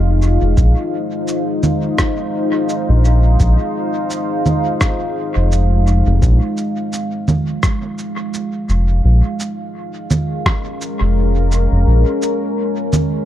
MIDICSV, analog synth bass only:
0, 0, Header, 1, 2, 480
1, 0, Start_track
1, 0, Key_signature, -5, "minor"
1, 0, Tempo, 705882
1, 391, Time_signature, 4, 2, 24, 8
1, 9010, End_track
2, 0, Start_track
2, 0, Title_t, "Analog synth bass"
2, 0, Program_c, 0, 38
2, 0, Note_on_c, 0, 29, 95
2, 261, Note_off_c, 0, 29, 0
2, 287, Note_on_c, 0, 29, 98
2, 378, Note_off_c, 0, 29, 0
2, 389, Note_on_c, 0, 34, 98
2, 510, Note_off_c, 0, 34, 0
2, 1967, Note_on_c, 0, 34, 82
2, 2291, Note_off_c, 0, 34, 0
2, 2312, Note_on_c, 0, 34, 98
2, 2432, Note_off_c, 0, 34, 0
2, 3647, Note_on_c, 0, 29, 91
2, 4101, Note_off_c, 0, 29, 0
2, 4126, Note_on_c, 0, 29, 100
2, 4218, Note_off_c, 0, 29, 0
2, 4232, Note_on_c, 0, 34, 102
2, 4351, Note_off_c, 0, 34, 0
2, 5911, Note_on_c, 0, 29, 92
2, 6126, Note_off_c, 0, 29, 0
2, 6152, Note_on_c, 0, 34, 100
2, 6271, Note_off_c, 0, 34, 0
2, 7487, Note_on_c, 0, 29, 96
2, 7941, Note_off_c, 0, 29, 0
2, 7968, Note_on_c, 0, 29, 99
2, 8059, Note_off_c, 0, 29, 0
2, 8074, Note_on_c, 0, 34, 101
2, 8192, Note_off_c, 0, 34, 0
2, 9010, End_track
0, 0, End_of_file